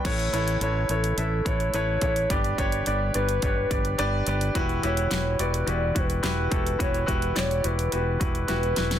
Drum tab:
CC |x---------------|----------------|----------------|----------------|
HH |xxxxx-xxx-xxx-xx|xxxxx-xxx-xxx-xx|xxxxx-xxx-xxx-xx|xxxxxxxxx-xxxxxx|
CP |----------------|----------------|----x-------x---|----x-----------|
SD |----------------|----------------|----o-------o---|----o-------o-oo|
BD |o---------o---o-|o-o-----o-o-----|o---------o---o-|o-o-------o-----|